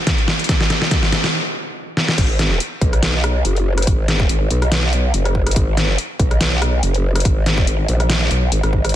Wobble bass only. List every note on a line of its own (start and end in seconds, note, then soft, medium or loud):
2.18 2.59 G#1 loud
2.81 3.43 B1 loud
3.45 3.86 F#1 loud
3.87 4.28 G#1 medium
4.29 4.49 G#1 loud
4.50 5.12 B1 loud
5.14 5.55 F#1 loud
5.56 5.97 G#1 loud
6.19 6.81 B1 loud
6.83 7.24 F#1 loud
7.25 7.66 G#1 loud
7.67 7.87 G#1 loud
7.88 8.29 A#1 loud
8.31 8.50 B1 loud
8.52 8.62 G#1 loud
8.63 8.93 G#1 loud